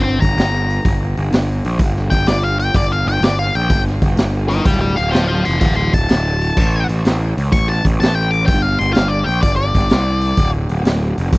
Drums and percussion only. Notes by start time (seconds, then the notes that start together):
0.22 kick, open hi-hat
0.38 snare, open hi-hat
0.70 open hi-hat
0.85 kick, open hi-hat
1.17 open hi-hat
1.32 snare, open hi-hat
1.64 open hi-hat
1.79 kick, open hi-hat
1.97 snare
2.11 kick, open hi-hat
2.26 snare, open hi-hat
2.60 open hi-hat
2.74 kick, open hi-hat
3.07 open hi-hat
3.22 snare, open hi-hat
3.55 open hi-hat
3.70 kick, open hi-hat
3.87 snare
4.02 kick, open hi-hat
4.17 snare, open hi-hat
4.50 open hi-hat
4.65 kick, open hi-hat
4.97 open hi-hat
5.13 snare, open hi-hat
5.45 open hi-hat
5.61 kick, open hi-hat
5.94 kick, open hi-hat
6.09 snare, open hi-hat
6.41 open hi-hat
6.57 kick, crash
6.89 open hi-hat
7.05 snare, open hi-hat
7.38 open hi-hat
7.52 kick, open hi-hat
7.70 snare
7.85 kick, open hi-hat
8.02 snare, open hi-hat
8.33 open hi-hat
8.48 kick, open hi-hat
8.81 open hi-hat
8.95 snare, open hi-hat
9.28 open hi-hat
9.43 kick, open hi-hat
9.75 kick, open hi-hat
9.89 snare, open hi-hat
10.21 open hi-hat
10.37 kick, open hi-hat
10.69 open hi-hat
10.85 snare, open hi-hat
11.18 open hi-hat
11.33 kick, open hi-hat